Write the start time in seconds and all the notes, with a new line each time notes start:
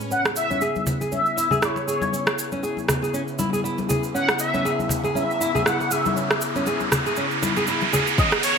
Already playing: swell
0.01 cabasa
0.11 C#3 B3 C#4 E4 F#5, riser, cabasa
0.25 cross-stick, muted conga, cabasa
0.36 E5, cabasa
0.50 C#4, high conga, cabasa
0.61 G#4, muted conga, cabasa
0.76 high conga, cabasa
0.87 low conga, cabasa
1.01 G#4, muted conga, cabasa
1.12 C#4 E5, high conga, cabasa
1.26 cabasa
1.37 E4, muted conga, cabasa
1.51 G#4, high conga, low conga, cabasa
1.62 E4 C#5, cross-stick, cabasa
1.76 muted conga, cabasa
1.87 G#4 C#5, cabasa
2.02 high conga, cabasa
2.13 C#4, cabasa
2.27 cross-stick, muted conga, cabasa
2.39 cabasa
2.52 C#4, high conga, cabasa
2.63 G#4, muted conga, cabasa
2.77 high conga, cabasa
2.88 cross-stick, low conga, cabasa
3.02 G#4, muted conga, cabasa
3.14 C#4, cabasa
3.28 cabasa
3.39 E4, muted conga, high conga, cabasa
3.53 G#4, high conga, cabasa
3.64 E4, cabasa
3.78 muted conga, high conga, cabasa
3.89 G#4, low conga, cabasa
4.03 cabasa
4.14 C#4 F#5, cabasa
4.29 cross-stick, muted conga, cabasa
4.39 E5, cabasa
4.54 C#4, high conga, cabasa
4.65 G#4, muted conga, cabasa
4.79 high conga, cabasa
4.89 low conga, cabasa
5.04 G#4, muted conga, cabasa
5.15 C#4 E5, high conga, cabasa
5.31 cabasa
5.40 E4, muted conga, cabasa
5.55 G#4, high conga, low conga, cabasa
5.65 E4 F#5, cross-stick, cabasa
5.80 muted conga, cabasa
5.91 G#4 E5, cabasa
6.05 high conga, cabasa
6.16 C#4, cabasa
6.31 cross-stick, muted conga, cabasa
6.41 cabasa
6.55 C#4, high conga, cabasa
6.66 G#4, muted conga, cabasa
6.80 high conga, cabasa
6.92 cross-stick, low conga, cabasa
7.06 G#4, muted conga, cabasa
7.16 C#4, cabasa
7.31 cabasa
7.42 E4, muted conga, high conga, cabasa
7.57 G#4, high conga, cabasa
7.67 E4, cabasa
7.81 muted conga, high conga, cabasa
7.93 G#4, low conga, cabasa
8.07 cabasa
8.18 D#3 B3 C#4 D#5, kick, cabasa
8.32 cross-stick, muted conga, cabasa
8.43 C#5, open hi-hat, cabasa